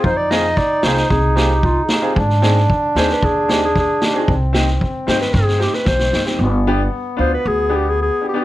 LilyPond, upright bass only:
\new Staff \with { instrumentName = "Upright bass" } { \clef bass \time 4/4 \key g \phrygian \tempo 4 = 113 f,4. c,8 c,2 | aes,4. ees,8 ees,2 | c,4. g,8 g,4 b,,8 g,,8 | g,,4. d,8 d,2 | }